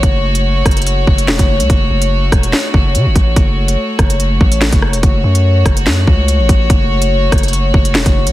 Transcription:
<<
  \new Staff \with { instrumentName = "String section" } { \time 4/4 \key fis \minor \tempo 4 = 144 << { <fis' cis''>1~ | <fis' cis''>1~ | <fis' cis''>1 | <fis' cis''>1~ |
<fis' cis''>1 | } \\ { a1~ | a1~ | a1~ | a1~ |
a1 | } >> }
  \new Staff \with { instrumentName = "808-style bass" } { \clef bass \time 4/4 \key fis \minor fis,,4. fis,,4 fis,,8 e,,16 fis,,8 cis,16 | fis,,8 fis,,4 e,,8 r8 fis,,8 cis16 fis,,16 a,,8 | fis,,4 r8 fis,,4 a,,8. fis,,8 e,,16 | fis,,8 fis,4 fis,,8 fis,8 cis,8. a,,16 a,,8 |
fis,,4. fis,,4 fis,,8 e,,16 fis,,8 cis,16 | }
  \new DrumStaff \with { instrumentName = "Drums" } \drummode { \time 4/4 <hh bd>8. hh16 r8 <hh bd ss>32 hh32 hh32 hh32 hh8 bd16 hh16 <hc sn>16 <hh bd>8 hh16 | <hh bd>8. hh16 r8 <hh bd ss>16 hh16 <hc sn>8 bd8 hh8 <hh bd>8 | <hh bd>8. hh16 r8 <hh bd ss>16 hh16 hh8 bd16 hh16 <hc sn>16 <hh bd>16 ss16 hh16 | <hh bd>8. hh16 r8 <hh bd ss>16 hh16 <hc sn>8 bd8 hh8 <hh bd>8 |
<hh bd>8. hh16 r8 <hh bd ss>32 hh32 hh32 hh32 hh8 bd16 hh16 <hc sn>16 <hh bd>8 hh16 | }
>>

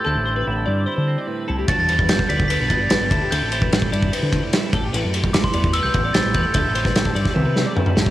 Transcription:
<<
  \new Staff \with { instrumentName = "Glockenspiel" } { \time 4/4 \key d \dorian \tempo 4 = 148 g'''4 r2. | a'''16 a'''8. g'''8 b'''8 b'''8 a'''8 a'''4 | g'''4 r2. | r4 d'''16 c'''8. e'''16 g'''8. a'''8 g'''8 |
g'''4 r2. | }
  \new Staff \with { instrumentName = "Clean electric guitar" } { \time 4/4 \key d \dorian a'8 c''16 b'8 a'16 d''8 c''16 c''8 d''16 b'8 a'16 g'16 | a'8 c''16 b'8 a'16 d''8 b'16 b'8 d''16 b'8 a'16 g'16 | a'8 c''16 b'8 a'16 d''8 b'16 b'8 d''16 b'8 a'16 g'16 | b'8 c''16 b'8 a'16 d''8 b'16 b'8 d''16 c''8 b'16 a'16 |
a'8 c''16 b'8 a'16 d''8 b'16 b'8 d''16 b'8 a'16 g'16 | }
  \new Staff \with { instrumentName = "Clean electric guitar" } { \time 4/4 \key d \dorian << { <g c' e'>8 c'8 e'4 e'8 c'4 e'8 | fis'8 b8 fis'4 d'8 b4 e'8 | c'8 e'4 e'8 c'4 e'8 g'8~ | g'8 g'4 b8 g4 b8 g'8 |
e'8 c'8 e'4 e'8 g16 a16 e'4 | } \\ { d4. g4. a,4 | g,4. d4. g,8 d8~ | d4 g4. a,4 a,8~ | a,4 e4. e,4 a,8 |
d4. g8 c4. e8 | } >> }
  \new Staff \with { instrumentName = "Fingered electric bass" } { \clef bass \time 4/4 \key d \dorian d,16 a,,8. a,,8 g,8 r16 d8 r8. c,8 | g,,16 e,8. g,,16 r16 d,8. b,,16 g,,8 g,,16 g,,16 d,16 r16 | d,16 a,,8. a,,8 g,8 r16 d8 r8. a,,8 | a,,16 fis,8. a,,16 r16 e,8. c,16 a,,8 a,,16 a,,16 e,16 r16 |
d,16 a,,8. a,,8 g,16 r16 c,16 c8 r8. a,,8 | }
  \new DrumStaff \with { instrumentName = "Drums" } \drummode { \time 4/4 r4 r4 r4 r4 | <bd cymr>8 cymr16 bd16 <cymr sn>16 bd16 cymr16 bd16 cymr8 <bd cymr>8 <cymr sn>8 <bd cymr>8 | cymr8 cymr16 bd16 <cymr sn>16 bd16 cymr16 bd16 cymr8 <bd cymr>8 <cymr sn>8 <bd cymr>8 | cymr8 cymr16 bd16 <cymr sn>16 bd16 cymr16 bd16 cymr8 <bd cymr>8 <cymr sn>8 <bd cymr>8 |
<bd cymr>8 cymr16 <bd sn>16 <cymr sn>16 bd16 cymr16 <bd sn>16 tommh8 sn8 toml16 toml16 sn16 bd16 | }
>>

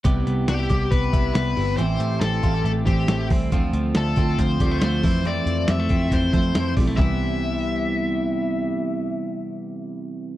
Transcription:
<<
  \new Staff \with { instrumentName = "Lead electric guitar" } { \time 4/4 \key c \major \tempo 4 = 139 r4 g'4 b'4 b'4 | c''4 a'4 a'8 g'4 r8 | r4 a'4 c''4 c''4 | d''4 e''4 c''8 c''4 r8 |
e''1~ | e''1 | }
  \new Staff \with { instrumentName = "Clean electric guitar" } { \time 4/4 \key c \major <b g'>8 b8 d'16 e'16 g'8 b8 e'8 b8 e'8 | <e g'>8 a8 c'8 f'16 g'16 a8 c'8 a8 c'8 | <f c'>8 f8 a8 c'8 f8 g16 a16 f8 e8 | <e c'>8 e8 g16 a16 c'8 e8 a8 e8 g16 a16 |
<g b e'>1~ | <g b e'>1 | }
  \new Staff \with { instrumentName = "Twelve-string acoustic guitar" } { \time 4/4 \key c \major <c g b e'>4 <c g b e'>8 <c g b e'>4 <c g b e'>8 <c g b e'>8 <c g b e'>8 | <a, e g c' e'>4 <e g c' e'>8 <e g c' e'>4 <e g c' e'>8 <e g c' e'>8 <e g c' e'>8 | <d a c' f'>4 <d a c' f'>8 <d a c' f'>4 <d a c' f'>8 <d a c' f'>8 <f a c' e'>8 | <f a c' e'>4 <f a c' e'>8 <f a c' e'>4 <f a c' e'>8 <f a c' e'>8 <f a c' e'>8 |
<c e g c' e' b'>1~ | <c e g c' e' b'>1 | }
  \new Staff \with { instrumentName = "Picked electric bass" } { \clef bass \time 4/4 \key c \major c,8 c,8 c,8 c,8 c,8 c,8 c,8 g,,8 | a,,8 a,,8 a,,8 a,,8 a,,8 a,,8 a,,8 c,8 | d,8 d,8 d,8 d,8 d,8 d,8 d,8 f,8~ | f,8 f,8 f,8 f,8 f,8 f,8 f,8 b,,8 |
c,1~ | c,1 | }
  \new DrumStaff \with { instrumentName = "Drums" } \drummode { \time 4/4 <hh bd>8 hh8 <hh sn>8 <hh bd sn>8 <hh bd>8 <hh bd>8 <hh sn>8 hho8 | hh8 hh8 <hh sn>8 <hh bd>8 hh8 <hh bd>8 <hh sn>8 <hho bd>8 | <hh bd>8 hh8 <hh sn>8 <hh bd sn>8 <hh bd>8 <hh bd>8 <hh sn>8 <hho bd>8 | hh8 hh8 <hh sn>8 <hh bd>8 <hh bd>8 <hh bd>8 <hh sn>8 <hho bd>8 |
<hc bd tomfh>4 r4 r4 r4 | r4 r4 r4 r4 | }
>>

